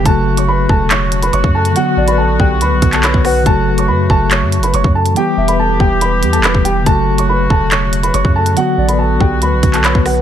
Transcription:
<<
  \new Staff \with { instrumentName = "Grand piano" } { \time 4/4 \key fis \phrygian \tempo 4 = 141 <a' a''>8. <cis'' cis'''>16 <b' b''>8 <a' a''>8 <cis'' cis'''>8. <b' b''>16 <cis'' cis'''>8 <a' a''>8 | <fis' fis''>8. <b' b''>16 <a' a''>8 <g' g''>8 <b' b''>8. <a' a''>16 <b' b''>8 <fis' fis''>8 | <a' a''>8. <cis'' cis'''>16 <b' b''>8 <a' a''>8 <cis'' cis'''>8. <b' b''>16 <cis'' cis'''>8 <a' a''>8 | <g' g''>8. <b' b''>16 <a' a''>8 <g' g''>8 <b' b''>8. <a' a''>16 <b' b''>8 <g' g''>8 |
<a' a''>8. <cis'' cis'''>16 <b' b''>8 <a' a''>8 <cis'' cis'''>8. <b' b''>16 <cis'' cis'''>8 <a' a''>8 | <fis' fis''>8. <b' b''>16 <a' a''>8 <g' g''>8 <b' b''>8. <a' a''>16 <b' b''>8 <fis' fis''>8 | }
  \new Staff \with { instrumentName = "Soft synth lead" } { \time 4/4 \key fis \phrygian r1 | r8 d''8 r2 cis''8 b'8 | r1 | r8 e''8 r2. |
r1 | r8 d''8 r2 cis''8 b'8 | }
  \new Staff \with { instrumentName = "Woodwind section" } { \time 4/4 \key fis \phrygian << { fis'1~ | fis'1~ | fis'1 | g'1 |
fis'1 | fis'1 | } \\ { <cis a>1 | <d b>1 | <cis a>1 | <e b>1 |
<cis a>1 | <d b>1 | } >> }
  \new Staff \with { instrumentName = "Tine electric piano" } { \clef bass \time 4/4 \key fis \phrygian <cis fis a fis'>1 | <d fis b fis'>2~ <d fis b fis'>8 <d fis b fis'>4. | <cis fis a fis'>1 | <e g b g'>2~ <e g b g'>8 <e g b g'>4. |
<cis fis a fis'>1 | <d fis b fis'>2~ <d fis b fis'>8 <d fis b fis'>4. | }
  \new Staff \with { instrumentName = "808-style bass" } { \clef bass \time 4/4 \key fis \phrygian fis,,4. e,,4. fis,,16 fis,8. | r8 a,,4 b,,8 d,16 b,,16 b,,8. b,,8. | fis,,4 fis,8 fis,,8. fis,16. fis,,16. fis,,16 fis,8. | r8 e,,4 e,,4 e,16. e,,16. e,,8. |
fis,,4. e,,4. fis,,16 fis,8. | r8 a,,4 b,,8 d,16 b,,16 b,,8. b,,8. | }
  \new DrumStaff \with { instrumentName = "Drums" } \drummode { \time 4/4 <hh bd>8. hh16 r8 bd8 <hc hh>8 hh16 hh16 hh16 bd8 hh16 | hh8. hh16 r8 bd8 hh8 <hh bd>16 <hc hh>16 <hc hh>16 bd16 <hho ss>8 | <hh bd>8. hh16 r8 bd8 <hc hh>8 hh16 hh16 hh16 bd8 hh16 | hh8. hh16 r8 bd8 hh8 hh16 hh16 <hc hh>16 bd16 hh8 |
<hh bd>8. hh16 r8 bd8 <hc hh>8 hh16 hh16 hh16 bd8 hh16 | hh8. hh16 r8 bd8 hh8 <hh bd>16 <hc hh>16 <hc hh>16 bd16 <hho ss>8 | }
>>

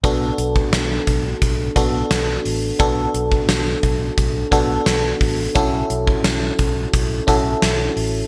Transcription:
<<
  \new Staff \with { instrumentName = "FM electric piano" } { \time 4/4 \key b \minor \tempo 4 = 87 <b d' fis' a'>4~ <b d' fis' a'>16 r4 r16 <b d' fis' a'>4 r8 | <b d' fis' a'>4~ <b d' fis' a'>16 r4 r16 <b d' fis' a'>4 r8 | <cis' e' fis' a'>4~ <cis' e' fis' a'>16 r4 r16 <cis' e' fis' a'>4 r8 | }
  \new Staff \with { instrumentName = "Fingered electric bass" } { \clef bass \time 4/4 \key b \minor b,,8 b,,8 b,,8 b,,8 b,,8 b,,8 b,,8 a,,8 | b,,8 b,,8 b,,8 b,,8 b,,8 b,,8 b,,8 a,,8 | b,,8 b,,8 b,,8 b,,8 b,,8 b,,8 b,,8 a,,8 | }
  \new DrumStaff \with { instrumentName = "Drums" } \drummode { \time 4/4 <hh bd>8 hh16 bd16 <hh sn>8 <hh bd>8 <hh bd>8 <hh bd>8 <hh sn>8 hho8 | <hh bd>8 hh16 bd16 <hh sn>8 <hh bd>8 <hh bd>8 <hh bd>8 <hh sn>8 <hho bd>8 | <hh bd>8 hh16 bd16 <hh sn>8 <hh bd>8 <hh bd>8 <hh bd>8 <hh sn>8 hho8 | }
>>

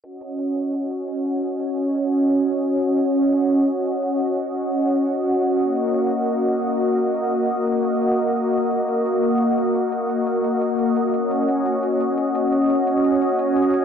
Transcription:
<<
  \new Staff \with { instrumentName = "Analog synth pad" } { \time 4/4 \key ees \minor \tempo 4 = 173 << { <ges' ees''>1~ | <ges' ees''>1~ | <ges' ees''>1~ | <ges' ees''>1~ |
<ges' ees''>1~ | <ges' ees''>1~ | <ges' ees''>1~ | <ges' ees''>1 |
<ges' ees''>1~ | <ges' ees''>1 | } \\ { des'1~ | des'1~ | des'1~ | des'1 |
bes1~ | bes1~ | bes1~ | bes1 |
des'1~ | des'1 | } >> }
  \new DrumStaff \with { instrumentName = "Drums" } \drummode { \time 4/4 hh8 hh8 hh8 hh8 hh8 hh8 hh8 hh8 | hh8 hh8 hh8 hh8 hh8 hh8 hh8 hh8 | hh8 hh8 hh8 hh8 hh8 hh8 hh8 hh8 | hh8 hh8 hh8 hh8 hh8 hh8 hh8 hh8 |
hh8 hh8 hh8 hh8 hh8 hh8 hh8 hh8 | hh8 hh8 hh8 hh8 hh8 hh8 hh8 hh8 | hh8 hh8 hh8 hh8 hh8 hh8 hh8 hh8 | hh8 hh8 hh8 hh8 hh8 hh8 hh8 hh8 |
hh8 hh8 hh8 hh8 hh8 hh8 hh8 hh8 | hh8 hh8 hh8 hh8 hh8 hh8 hh8 hh8 | }
>>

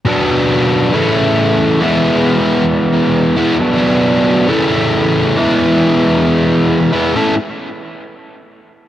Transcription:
\new Staff \with { instrumentName = "Overdriven electric guitar" } { \time 4/4 \key a \major \tempo 4 = 135 <b, fis b d'>2 <cis e a e'>2 | <e gis b e'>2.~ <e gis b e'>8 <e gis b e'>8 | <b, fis b d'>2 <cis e a e'>2 | <e gis b e'>2.~ <e gis b e'>8 <e gis b e'>8 |
<a cis' e' a'>8 r2. r8 | }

